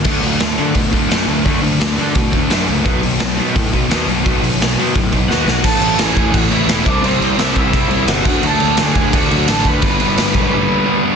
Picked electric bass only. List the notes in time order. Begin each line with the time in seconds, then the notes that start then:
0.05 D2
0.23 D2
0.40 D2
0.59 D3
0.76 B2
0.93 D2
1.12 F#2
1.27 D2
1.46 D2
1.62 D2
1.80 D2
1.98 D3
2.16 B2
2.34 D2
2.52 F#2
2.69 C#2
2.86 B1
3.03 B1
3.22 B1
3.40 B2
3.56 A2
3.74 B1
3.88 D#2
4.08 B1
4.27 B1
4.42 B1
4.58 B1
4.75 B2
4.97 A2
5.13 B1
5.28 D#2
5.46 B1
5.65 A1
5.79 A1
5.98 A1
6.16 A1
6.34 A1
6.50 A1
6.67 E1
6.86 C2
7.02 C2
7.21 C2
7.37 C2
7.56 C2
7.74 C2
7.89 C2
8.07 G1
8.25 D2
8.42 D2
8.60 D2
8.79 D2
8.96 D2
9.13 D2
9.31 D2
9.48 A1
9.66 D2
9.83 G1
10.01 G1
10.18 G1
10.35 B1